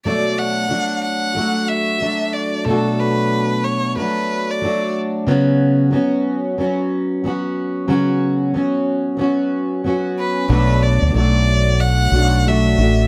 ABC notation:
X:1
M:4/4
L:1/16
Q:"Swing 16ths" 1/4=92
K:Bm
V:1 name="Violin"
d2 f4 f4 e4 d2 | A2 B4 c2 B3 d3 z2 | z16 | z12 z2 B2 |
B2 d2 d4 f4 e4 |]
V:2 name="Steel-string acoustic guitar"
[B,,F,A,DF]4 [F,A,DF]4 [F,A,DF]4 [F,A,DF]4 | [B,,F,A,DF]8 [F,A,DF]4 [F,A,DF]4 | [C,F,B,CF]4 [F,B,CF]4 [F,B,CF]4 [F,B,CF]4 | [C,F,B,CF]4 [F,B,CF]4 [F,B,CF]4 [F,B,CF]4 |
[B,,F,A,DF]4 [F,A,DF]6 [A,DF]2 [F,A,DF]2 [A,DF]2 |]
V:3 name="Fretless electric bass" clef=bass
z16 | z16 | z16 | z16 |
B,,,3 D,, B,,,6 B,,,4 A,,,2 |]